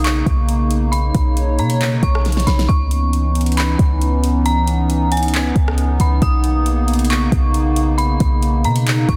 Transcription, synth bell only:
0.05 C#6
0.92 B5
1.59 A#5
2.03 C#6
2.47 B5
2.69 C#6
3.57 B5
4.46 A#5
5.12 G#5
6.01 B5
6.22 D#6
7.10 C#6
7.98 B5
8.65 A#5
9.09 C#6

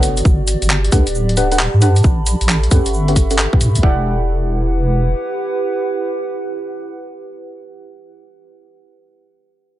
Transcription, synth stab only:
Already playing: D4 A4 B4 C#5 F#5
0.92 D4 G4 A4 B4 F#5
1.37 D4 G4 A4 B4 F#5
1.52 D4 G4 A4 B4 F#5
1.82 D4 G4 A4 B4 F#5
2.71 C#4 G4 A4 B4 F#5
3.08 C#4 G4 A4 B4 F#5
3.31 C#4 G4 A4 B4 F#5
3.53 C#4 G4 A4 B4 F#5
3.83 E4 G4 A4 D5 F#5

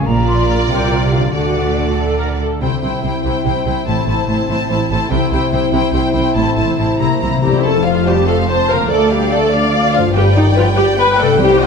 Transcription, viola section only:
0.06 F4
1.33 F#4
1.98 A4
2.19 A#4
2.40 A4
2.61 E4
2.83 E4
3.04 E4
3.25 E4
3.45 E4
3.67 E4
3.87 E4
4.08 E4
4.29 E4
4.50 E4
4.69 E4
4.91 E4
5.11 E4
5.32 E4
5.52 E4
5.73 E4
5.93 E4
6.14 E4
6.36 E4
6.56 E4
6.79 E4
6.99 E4
7.21 E4
7.42 E4 G4
7.64 A4
7.84 F4
8.07 G4
8.27 A4
8.49 C5
8.70 A#4
8.91 A4
9.12 G4
9.33 A4
9.53 D5
9.94 F4
10.15 G4
10.36 D#4
10.56 F4
10.77 G4
10.98 B4
11.19 A4
11.40 G4
11.60 F4

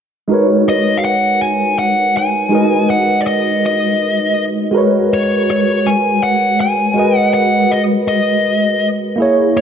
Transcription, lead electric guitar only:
0.69 D#5
0.98 F5
1.05 F#5
1.42 G#5
1.79 F#5
2.17 G#5
2.90 F#5
3.21 D5
3.27 D#5
3.66 D#5
5.14 C#5
5.51 C#5
5.87 G#5
6.23 F#5
6.61 G#5
7.17 F#5
7.34 F#5
7.71 D#5
8.08 D#5
9.57 C#5

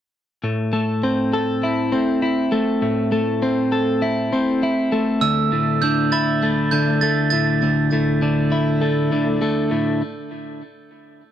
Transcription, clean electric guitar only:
0.44 A2
0.73 A3
1.03 C4
1.33 A4
1.63 E4
1.92 C4
2.22 E4
2.52 A3
2.82 A2
3.12 A3
3.42 C4
3.72 A4
4.02 E4
4.33 C4
4.63 E4
4.92 A3
5.22 D2
5.52 A2
5.83 D3
6.12 E4
6.43 A3
6.72 D3
7.03 A3
7.33 A2
7.63 D2
7.92 A2
8.22 D3
8.52 E4
8.81 A3
9.12 D3
9.42 A3
9.71 A2

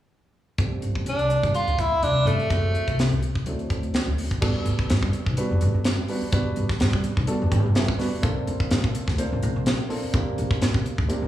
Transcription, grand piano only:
0.58 F3 A3 C4 D4 G4
2.27 F3 A3 C4 D4 G4
2.49 F#3 A3 C4 E4 G#4
3.47 F#3 C4 D4 E4 A4
4.41 G3 B3 D4 F#4 A4
5.37 G3 B3 D4 F#4 B4
6.08 G3 B3 D4 F#4 B4
6.32 G3 B3 D4 F#4 B4
7.27 G3 B3 D4 F#4 A4
7.52 G5
7.75 E5
7.98 G3 B3 D4 F#4 B4 D5
8.22 A#3 C4 D4 F4 A4
9.18 A#3 C4 D4 F4 C5
9.89 A#3 C4 D4 F4 A4
10.13 A#3 C4 D4 F4 G4
11.08 A#3 C4 D4 F4 G4

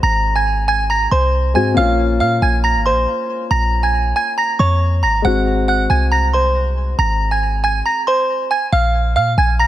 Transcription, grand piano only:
Already playing: G#3 C4 F#4
1.54 G#3 C4 F#4
1.74 A#3 C#4
1.79 F4
5.22 G#3 C4
5.27 F#4

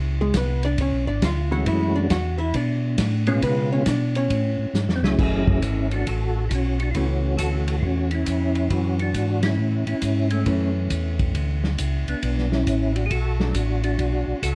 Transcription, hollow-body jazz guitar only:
0.21 G#3 G#4
0.37 B3 B4
0.65 D4 D5
0.81 C#4 C#5
1.07 D4 D5
1.24 F4 F5
1.52 F#4 F#5
1.67 E4 E5
1.96 D4 D5
2.11 F#4 F#5
2.38 E4 E5
2.55 D4 D5
3.28 C#4 C#5
3.43 B3 B4
3.72 C#4 C#5
3.88 D4 D5
4.16 C#4 C#5
5.19 E3 A3 C#4
6.96 E3 A3 C#4
8.71 E3
10.46 E3 A3 C#4
13.41 F#3 A3 D4

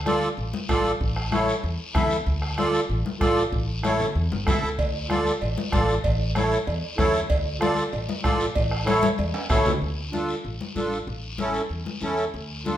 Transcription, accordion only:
0.06 F4 A4 D5
0.70 F4 A4 D5
1.32 E4 A4 C#5
1.94 E4 A4 E5
2.58 F4 A4 D5
3.20 F4 A4 D5
3.84 E4 A4 C#5
4.47 E4 A4 E5
5.09 F4 A4 D5
5.72 F4 A4 D5
6.36 E4 A4 C#5
6.98 E4 A4 C#5
7.61 F4 A4 D5
8.23 F4 A4 D5
8.86 E4 A4 C#5
9.49 E4 A4 C#5
10.12 D4 F4 A4
10.75 D4 F4 A4
11.39 C#4 E4 A4
12.02 C#4 E4 A4
12.65 D4 F4 A4

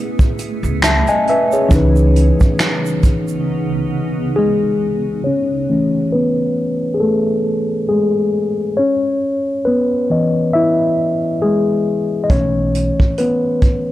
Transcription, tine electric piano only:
Already playing: A3 C#4 E4 B4
0.84 E5 A5
1.08 D#5 G#5
1.29 B4 E5
1.52 G#4 C#5
1.69 E3 C#4
1.73 D#4 B4
4.36 G#3 G#4
5.24 C#4 C#5
5.70 E3 A3 C#4
6.12 B3 B4
6.94 G#4
7.00 A3 A4
7.89 G#3 G#4
8.77 C#4 C#5
9.65 B3 B4
10.10 E3 B3 D#5
10.53 E4 E5
11.42 G#3 G#4
12.24 D#5
12.30 E3 A3 C#4 C#5
13.18 B3 B4

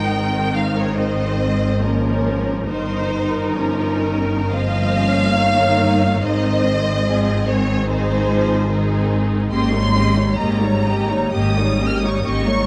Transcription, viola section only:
Already playing: D#4
0.08 D#3
0.96 D#3 D#4
1.39 C4
1.80 F3 A#3
2.69 D#3 D#4
3.11 D#3
3.55 F3 C#4
4.03 D#3
4.51 F3 A#3
5.37 D#3
6.23 D#3 C4
7.07 F3
7.48 D#3
7.90 D#3
8.30 F3
8.70 D#3 C4
9.52 A#3 C#4
9.73 G3 A#3
9.96 A#3 C#4
10.18 G3 A#3
10.39 A#3 C#4
10.61 G3 A#3
10.86 A#3 C#4
11.09 G3 A#3
11.34 A#3 C#4
11.58 G3 A#3
11.80 A#3 C#4
12.02 G3 A#3
12.24 A#3 C#4
12.46 G3 A#3

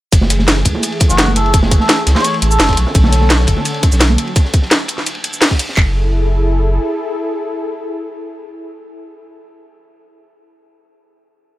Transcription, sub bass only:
0.13 F#1
0.66 C#2
1.10 F#1
2.07 C#2
2.42 A1
2.60 F#1
2.77 B1
2.95 B1
3.48 F#1
3.92 B1
5.77 F#1

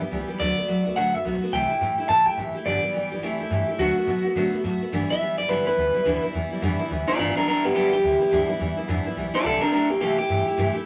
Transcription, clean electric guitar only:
0.40 D5
0.96 F#5
1.14 E5
1.53 G5
2.09 A5
2.26 G5
2.66 D5
3.79 F#4
5.10 E5
5.38 D5
5.49 B4
5.67 B4
7.08 F4 D5
7.19 F4 D5
7.36 D4 A#4
7.48 D4 A#4
7.64 B3 G4
7.75 B3 G4
7.93 G4
9.35 F4 D5
9.44 A4 D5
9.61 D4 A#4
9.72 D4 A#4
9.89 A#3 G4
10.01 A#3 G4
10.18 G4

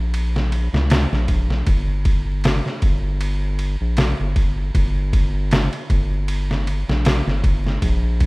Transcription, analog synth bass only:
Already playing: A#1
0.73 C#2
1.12 A#1
1.29 A#1
1.67 G1
2.83 G1
3.81 A#1
4.20 G1
4.37 G1
4.75 G1
5.90 G1
6.88 A#1
7.27 G1
7.44 G1
7.82 A#1

